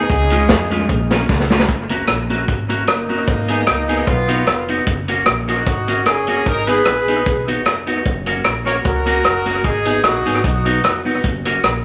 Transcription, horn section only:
0.00 1.29 D#4 medium
0.00 1.29 G#4 loud
2.88 4.04 A#3 medium
2.88 4.03 D#4 loud
4.06 4.69 B3 medium
4.06 4.68 F4 loud
5.48 6.03 D#4 medium
5.48 6.03 F#4 medium
6.07 6.47 C#4 medium
6.07 6.47 G#4 medium
6.47 6.68 D#4 medium
6.47 6.68 A#4 loud
6.68 7.48 G#4 medium
6.68 7.47 B4 loud
8.66 8.75 A#4 medium
8.66 8.75 C#5 loud
8.85 9.61 F#4 medium
8.85 9.61 A#4 loud
9.65 10.04 D#4 medium
9.65 10.05 G#4 loud
10.05 10.42 D#4 medium
10.05 10.42 F#4 medium
10.45 11.02 D#4 medium
10.45 11.02 F#4 medium

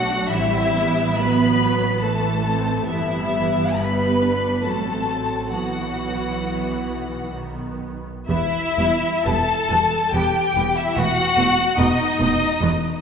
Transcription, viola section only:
0.00 0.33 A3 medium
0.00 0.33 D4 medium
0.33 1.21 G3 medium
0.33 0.76 C4 medium
0.76 2.05 B3 medium
1.21 2.05 F#3 medium
2.05 2.89 E3 medium
2.05 2.46 A3 medium
2.46 2.88 C4 medium
2.88 4.62 G3 medium
2.88 3.78 B3 medium
3.79 4.22 B3 medium
4.23 4.66 D4 medium
4.65 5.52 F#3 medium
4.65 5.54 C4 medium
5.53 7.36 E3 medium
5.53 7.35 B3 medium
7.36 8.08 D#3 soft
7.36 8.06 B3 soft
8.29 8.37 G3 medium
8.29 8.38 B3 medium
8.79 8.87 G3 medium
8.79 8.87 B3 medium
9.26 9.34 G3 medium
9.26 9.34 B3 medium
9.70 9.79 G3 medium
9.70 9.78 B3 medium
10.14 10.22 G3 medium
10.14 10.23 B3 medium
10.57 10.65 G3 medium
10.57 10.65 B3 medium
10.98 11.06 A3 medium
10.98 11.06 B3 medium
11.37 11.45 A3 medium
11.37 11.45 B3 medium
11.78 11.86 A3 medium
11.78 11.86 B3 medium
12.19 12.27 A3 medium
12.19 12.27 B3 medium
12.62 12.70 A3 medium
12.62 12.70 B3 medium

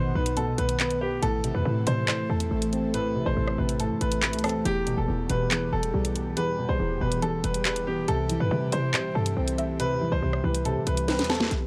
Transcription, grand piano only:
0.00 0.13 C5 medium
0.15 0.34 B4 medium
0.37 0.56 A4 medium
0.58 0.77 B4 medium
0.80 0.99 B4 medium
1.01 1.20 G4 medium
1.22 1.53 A4 loud
1.55 1.85 B4 medium
1.87 2.06 C5 loud
2.08 2.27 C5 medium
2.30 2.90 A4 medium
2.94 3.24 B4 loud
3.26 3.56 C5 medium
3.58 3.77 B4 medium
3.80 3.99 A4 medium
4.01 4.20 B4 medium
4.23 4.42 B4 medium
4.44 4.63 A4 medium
4.65 4.96 G4 loud
4.98 5.28 A4 medium
5.30 5.49 B4 medium
5.51 5.70 B4 medium
5.73 6.33 A4 medium
6.37 6.67 B4 loud
6.69 6.99 C5 medium
7.01 7.20 B4 medium
7.22 7.41 A4 medium
7.44 7.63 B4 medium
7.65 7.84 B4 medium
7.87 8.06 G4 medium
8.08 8.38 A4 loud
8.40 8.71 B4 medium
8.72 8.91 C5 medium
8.94 9.13 C5 medium
9.15 9.76 A4 medium
9.80 10.10 B4 loud
10.12 10.42 C5 medium
10.44 10.63 B4 medium
10.65 10.84 A4 medium
10.87 11.06 B4 medium
11.08 11.27 B4 medium
11.30 11.49 A4 medium

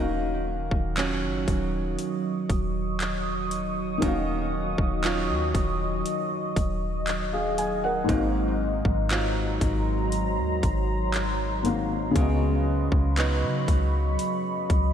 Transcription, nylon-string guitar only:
0.00 4.01 D#3 medium
0.00 0.97 F#3 medium
0.00 0.97 C#4 medium
0.00 0.98 F4 medium
0.97 5.03 F#3 medium
0.97 5.03 C#4 medium
0.97 5.05 F4 medium
4.02 8.09 D#3 medium
5.04 8.54 F#3 medium
5.04 8.19 C#4 medium
5.04 8.55 F4 medium
8.09 12.16 G#2 medium
9.11 12.61 F#3 medium
9.11 12.26 C4 medium
9.11 12.26 F4 medium
12.16 14.93 C#3 medium
13.17 14.93 F#3 medium
13.17 14.93 B3 medium
13.17 14.93 D#4 medium

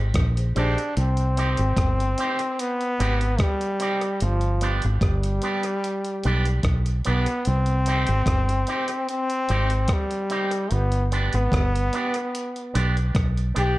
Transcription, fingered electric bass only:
0.00 0.11 G#1 medium
0.15 0.51 A#1 medium
0.57 0.75 A#1 medium
0.97 1.54 C2 loud
1.59 1.76 G#1 medium
1.77 2.14 G1 medium
3.00 3.36 G#1 medium
4.22 4.79 G1 loud
4.84 5.01 G#1 medium
5.02 5.39 G1 medium
6.25 6.61 B1 medium
6.64 7.01 B1 medium
7.07 7.25 B1 medium
7.47 8.05 C2 loud
8.09 8.26 G#1 medium
8.26 8.63 G1 loud
9.50 9.86 G#1 loud
10.72 11.30 G1 loud
11.34 11.51 G#1 medium
11.52 11.89 G1 medium
12.75 13.11 B1 medium
13.15 13.52 B1 medium
13.56 13.75 B1 medium

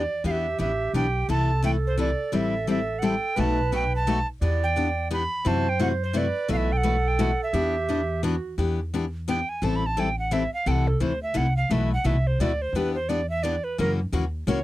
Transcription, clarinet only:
0.00 0.12 G4 medium
0.26 1.32 G4 medium
1.30 2.33 A4 medium
2.33 3.37 A4 medium
3.36 4.27 B4 loud
4.41 5.16 D5 loud
5.46 6.18 C5 loud
6.16 6.51 B4 medium
6.50 7.55 A4 loud
7.53 8.23 G4 medium
8.24 8.56 F#4 medium

